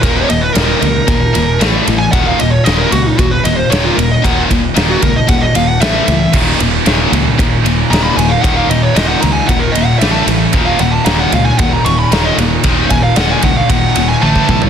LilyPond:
<<
  \new Staff \with { instrumentName = "Lead electric guitar" } { \time 4/4 \key ees \minor \tempo 4 = 114 bes'16 des''16 ees''16 ces''16 bes'2 r8. aes''16 | ges''16 f''16 ees''16 des''16 ees''16 bes'16 ges'16 ees'16 ges'16 ces''16 ees''16 c''16 des''16 f'16 bes'16 ees''16 | ges''8 r8. ges'16 bes'16 ees''16 ges''16 ees''16 f''16 ges''16 e''4 | r2. bes''16 ces'''16 aes''16 f''16 |
ges''16 f''16 ees''16 des''16 ees''16 ges''16 bes''16 aes''16 ges''16 bes'16 ees''16 ges''16 e''16 a''16 r8 | r16 f''16 ges''16 a''16 bes''16 ges''16 f''16 aes''16 ges''16 bes''16 des'''16 ces'''16 bes''16 ees''16 r8 | r8 aes''16 f''16 ges''16 aes''16 ges''16 f''16 ges''8. aes''16 a''8. r16 | }
  \new Staff \with { instrumentName = "Distorted electric guitar" } { \clef bass \time 4/4 \key ees \minor <ees, bes, ees>8 <ees, bes,>8 <ees, bes, ees>8 <ees, bes,>8 <ees, bes,>8 <ees, bes,>8 <a, e a>8 <a, e>8 | <ees, bes, ees>8 <ees, bes,>8 <ees, bes, ees>8 <ees, bes,>8 <ees, bes,>8 <ees, bes,>8 <ees, bes, ees>8 <ees, bes,>8 | <ees, bes, ees>8 <ees, bes,>8 <ees, bes, ees>8 <ees, bes,>8 <ees, bes,>8 <ees, bes,>8 <a, e a>8 <a, e>8 | <ees, bes, ees>8 <ees, bes,>8 <ees, bes, ees>8 <ees, bes,>8 <ees, bes,>8 <ees, bes,>8 <ees, bes, ees>8 <ees, bes,>8 |
<ees, bes, ees>8 <ees, bes,>8 <ees, bes, ees>8 <ees, bes,>8 <ees, bes,>8 <ees, bes,>8 <a, e a>8 <a, e>8 | <ees, bes, ees>8 <ees, bes,>8 <ees, bes, ees>8 <ees, bes,>8 <ees, bes,>8 <ees, bes,>8 <ees, bes, ees>8 <ees, bes,>8 | <ees, bes, ees>8 <ees, bes,>8 <ees, bes, ees>8 <ees, bes,>8 <ees, bes,>8 <ees, bes,>8 <a, e a>8 <a, e>8 | }
  \new Staff \with { instrumentName = "Distorted electric guitar" } { \clef bass \time 4/4 \key ees \minor <ees, bes, ees>8 <ees, bes,>8 <ees, bes, ees>8 <ees, bes,>8 <ees, bes,>8 <ees, bes,>8 <a, e a>8 <a, e>8 | <ees, bes, ees>8 <ees, bes,>8 <ees, bes, ees>8 <ees, bes,>8 <ees, bes,>8 <ees, bes,>8 <ees, bes, ees>8 <ees, bes,>8 | <ees, bes, ees>8 <ees, bes,>8 <ees, bes, ees>8 <ees, bes,>8 <ees, bes,>8 <ees, bes,>8 <a, e a>8 <a, e>8 | <ees, bes, ees>8 <ees, bes,>8 <ees, bes, ees>8 <ees, bes,>8 <ees, bes,>8 <ees, bes,>8 <ees, bes, ees>8 <ees, bes,>8 |
<ees, bes, ees>8 <ees, bes,>8 <ees, bes, ees>8 <ees, bes,>8 <ees, bes,>8 <ees, bes,>8 <a, e a>8 <a, e>8 | <ees, bes, ees>8 <ees, bes,>8 <ees, bes, ees>8 <ees, bes,>8 <ees, bes,>8 <ees, bes,>8 <ees, bes, ees>8 <ees, bes,>8 | <ees, bes, ees>8 <ees, bes,>8 <ees, bes, ees>8 <ees, bes,>8 <ees, bes,>8 <ees, bes,>8 <a, e a>8 <a, e>8 | }
  \new Staff \with { instrumentName = "Distorted electric guitar" } { \clef bass \time 4/4 \key ees \minor r1 | r1 | r1 | <ees, bes, ees>8 <ees, bes, ees>8 <ees, bes, ees>8 <ees, bes, ees>8 <ees, bes, ees>8 <ees, bes, ees>8 <ees, bes, ees>8 <ees, bes, ees>8 |
<ees, bes, ees>8 <ees, bes, ees>8 <ees, bes, ees>8 <ees, bes, ees>8 <ees, bes, ees>8 <ees, bes, ees>8 <e a>8 <a, e a>8 | <ees, bes, ees>8 <ees, bes, ees>8 ees8 <ees, bes, ees>8 <ees, bes, ees>8 <ees, bes, ees>8 <ees, bes, ees>8 <ees, bes, ees>8 | <ees, bes, ees>8 <ees, bes, ees>8 <ees, bes, ees>8 <ees, bes, ees>8 <ees, bes, ees>8 <ees, bes, ees>8 <a, e a>8 <a, e a>8 | }
  \new Staff \with { instrumentName = "Picked electric bass" } { \clef bass \time 4/4 \key ees \minor ees,,8 ees,,8 ees,,8 des,8 ees,,8 ees,,8 a,,8 a,,8 | ees,,8 ees,,8 ees,,8 des,8 ees,,8 ees,,8 ees,,8 ees,,8 | ees,,8 ees,,8 ees,,8 des,8 ees,,8 ees,,8 a,,8 des,8 | ees,,8 ees,,8 ees,,8 des,8 ees,,8 ees,,8 ees,,8 ees,,8 |
ees,,8 ees,,8 ees,,8 des,8 ees,,8 ees,,8 a,,8 a,,8 | ees,,8 ees,,8 ees,,8 des,8 ees,,8 ees,,8 ees,,8 ees,,8 | ees,,8 ees,,8 ees,,8 des,8 ees,,8 ees,,8 a,,8 ces,8 | }
  \new DrumStaff \with { instrumentName = "Drums" } \drummode { \time 4/4 <bd cymr>8 cymr8 <cymr sn>8 cymr8 <bd cymr>8 cymr8 <cymr sn>8 cymr8 | <bd cymr>8 cymr8 <cymr sn>8 cymr8 <bd cymr>8 cymr8 <cymr sn>8 cymr8 | <bd cymr>8 <bd cymr>8 <cymr sn>8 <bd cymr>8 <bd cymr>8 cymr8 <cymr sn>8 cymr8 | <cymc bd>8 cymr8 <cymr sn>8 cymr8 <bd cymr>8 cymr8 <cymr sn>8 cymr8 |
<bd cymr>8 cymr8 <cymr sn>8 cymr8 <bd cymr>8 cymr8 <cymr sn>8 cymr8 | <bd cymr>8 cymr8 <cymr sn>8 cymr8 <bd cymr>8 cymr8 <cymr sn>8 cymr8 | <bd cymr>8 <bd cymr>8 <cymr sn>8 <bd cymr>8 <bd cymr>8 cymr8 tommh16 bd16 bd16 tomfh16 | }
>>